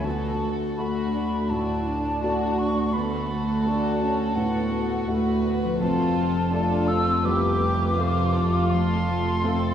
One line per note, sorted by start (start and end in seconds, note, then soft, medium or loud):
0.00 3.77 D3 soft
0.00 3.82 A3 soft
0.00 3.86 F#4 soft
0.00 0.75 F#4 soft
0.00 3.90 A4 soft
0.04 5.04 D2 soft
0.04 0.77 D2 soft
0.04 0.42 B3 soft
0.04 0.76 A4 soft
0.04 0.52 A5 medium
0.42 1.50 A3 soft
0.76 1.47 A3 soft
0.76 1.13 F#4 soft
0.76 2.22 F#4 soft
0.76 1.47 F#4 soft
0.76 1.47 A4 soft
0.76 1.51 B5 medium
1.14 1.49 D4 soft
1.50 2.20 A2 soft
1.50 2.21 D4 soft
1.50 1.86 E4 soft
1.50 2.60 A5 medium
1.86 2.94 D4 soft
2.22 2.91 A3 soft
2.22 2.93 F#4 soft
2.22 2.91 F#4 soft
2.22 2.91 A4 soft
2.58 2.95 C#6 medium
2.93 3.64 D2 soft
2.93 3.29 B3 soft
2.93 5.77 F#4 soft
2.93 5.04 A4 soft
2.93 3.64 B5 medium
3.29 3.65 A3 soft
3.65 4.33 A3 soft
3.65 4.01 D4 soft
3.65 4.33 F#4 soft
3.65 4.33 A4 soft
3.65 4.37 A5 medium
4.01 4.37 C#4 medium
4.35 5.06 A2 soft
4.35 5.08 B3 soft
4.35 5.08 F#5 medium
5.08 5.79 D2 soft
5.08 5.80 D2 medium
5.08 5.44 A3 medium
5.08 5.77 A3 soft
5.08 5.77 F#4 soft
5.08 5.77 A4 soft
5.08 5.81 B4 soft
5.45 5.81 B3 soft
5.63 9.53 F3 soft
5.67 9.57 A3 soft
5.72 9.62 F4 soft
5.77 6.51 F2 soft
5.77 6.51 C4 medium
5.77 9.67 A4 soft
5.77 6.89 A5 medium
5.81 9.74 F1 medium
5.81 9.74 F2 medium
5.81 6.52 F4 medium
5.81 6.52 A4 soft
6.52 7.22 A3 soft
6.52 6.89 D4 medium
6.52 7.24 F4 soft
6.52 7.22 F4 soft
6.52 7.24 A4 soft
6.52 7.22 A4 soft
6.87 7.25 C4 medium
6.87 7.27 E6 medium
7.24 7.96 C2 soft
7.24 7.61 B3 soft
7.24 7.98 G4 medium
7.24 7.96 B4 soft
7.24 8.72 D6 medium
7.61 7.96 A3 medium
7.97 9.40 A3 medium
7.97 8.66 A3 soft
7.97 9.40 F4 medium
7.97 8.67 F4 soft
7.97 8.67 A4 soft
7.97 8.34 C5 medium
8.35 8.71 A4 medium
8.70 9.41 F2 soft
8.70 9.74 A4 medium
8.70 9.74 C6 medium
9.43 9.74 A3 soft
9.43 9.74 C4 soft
9.43 9.74 F4 soft
9.43 9.74 A4 medium
9.43 9.74 A4 soft